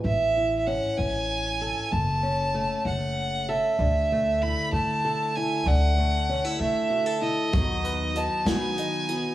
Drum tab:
HH |------|------|------|------|
SD |------|------|------|------|
BD |------|------|------|------|

HH |xxxxxx|
SD |---o--|
BD |o-----|